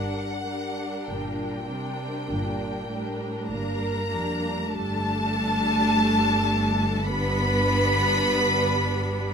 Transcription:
Already playing: double bass section G1, cello section G2, viola section G3 D4, violin section D4 A#4 F#5
0.46 viola section G3 D4, violin section D4 A#4
1.08 double bass section G1, cello section A#2, violin section G5
1.68 cello section C3, viola section G3 D4, violin section D4 A#4
2.30 double bass section G1, cello section A#2
2.91 cello section A2, viola section G3 D4, violin section D4 A#4
3.50 double bass section G1, cello section G2 A#3, violin section A#4 A#5
4.10 cello section F2, viola section G3 D4, violin section D4 A#4
4.71 double bass section G1, viola section G3 D4, cello section A3, violin section A4 A5
7.05 viola section G3 D4, cello section B3, violin section B4 B5

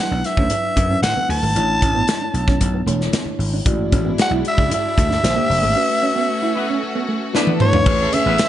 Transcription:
Already playing: tine electric piano F#3 D4 E4 B4
0.00 soprano saxophone F#5
0.11 slap bass B1, clean electric guitar D4
0.24 soprano saxophone E5, muted clean electric guitar stroke, snare, closed hi-hat
0.37 slap bass D2, clean electric guitar C#4, kick
0.50 clean electric guitar D4, closed hi-hat, muted conga, low conga
0.76 slap bass F#2, muted clean electric guitar stroke, kick, closed hi-hat
0.91 clean electric guitar C#4
1.02 slap bass A2, soprano saxophone F#5, snare, closed hi-hat, high conga
1.17 clean electric guitar B3, high conga
1.29 slap bass D2, soprano saxophone A5, muted clean electric guitar stroke, open hi-hat
1.42 slap bass G#1, clean electric guitar A3
1.54 slap bass A1, tine electric piano A3 D4 E4 C#5, closed hi-hat, muted conga
1.68 muted clean electric guitar stroke
1.82 slap bass A1, clean electric guitar C#4, kick, closed hi-hat, muted conga
1.95 clean electric guitar B3
2.08 snare, closed hi-hat, high conga
2.21 clean electric guitar D4
2.34 slap bass B1, muted clean electric guitar stroke, closed hi-hat
2.48 clean electric guitar C#4, kick, snare
2.61 slap bass B1, muted clean electric guitar stroke, kick, closed hi-hat, muted conga
2.74 clean electric guitar B3
2.86 slap bass E1, tine electric piano A3 D4 E4 C#5, clean electric guitar A3, closed hi-hat, muted conga
3.01 snare
3.13 clean electric guitar B3, snare, closed hi-hat, high conga
3.26 muted clean electric guitar stroke, high conga
3.39 slap bass G#1, open hi-hat
3.53 clean electric guitar D4
3.65 slap bass A1, tine electric piano G#3 E4 F#4 D5, string section G#3 D4 E4, kick, closed hi-hat, muted conga
3.80 muted clean electric guitar stroke
3.92 slap bass A1, clean electric guitar C#4, kick, closed hi-hat, muted conga
4.05 clean electric guitar B3
4.18 soprano saxophone F#5, snare, closed hi-hat, high conga
4.31 slap bass B1, clean electric guitar E4
4.44 soprano saxophone E5, muted clean electric guitar stroke, closed hi-hat
4.57 slap bass C#2, clean electric guitar D4, kick
4.70 clean electric guitar E4, soprano saxophone E5, closed hi-hat, muted conga, low conga
4.97 slap bass D2, muted clean electric guitar stroke, kick, closed hi-hat
5.10 clean electric guitar D4, snare
5.23 slap bass A#1, tine electric piano A#3 D4 G4 C5, string section A#3 G4, snare, closed hi-hat, high conga
5.36 clean electric guitar A#3, high conga
5.50 slap bass F1, muted clean electric guitar stroke, open hi-hat
5.63 slap bass G#1, clean electric guitar A3
5.75 tine electric piano A3 C#4 F#4 B4, string section A3 C#4 F#4
5.89 muted clean electric guitar stroke
6.02 clean electric guitar C#4
6.15 clean electric guitar B3
6.42 clean electric guitar E4
6.55 horn section B3 E4 F#4 B4, muted clean electric guitar stroke
6.70 clean electric guitar C#4
6.83 muted clean electric guitar stroke
6.95 clean electric guitar B3
7.08 clean electric guitar A3
7.33 string section E3 B3 D4 A4, tine electric piano A3 D4 E4 B4, clean electric guitar B3, horn section B3 D4 E4 B4, snare
7.47 muted clean electric guitar stroke, high tom
7.60 soprano saxophone C#5, mid tom
7.73 clean electric guitar D4, floor tom
7.85 slap bass A1, tine electric piano A3 C#4 G#4 B4, string section A3 C#4 G#4, kick, crash, muted conga
8.00 horn section A3 C#4 E4 A4, muted clean electric guitar stroke
8.13 clean electric guitar C#4, soprano saxophone E5, closed hi-hat, muted conga
8.26 slap bass A1, horn section B3 E4 G#4 B4, clean electric guitar B3
8.38 snare, closed hi-hat, high conga

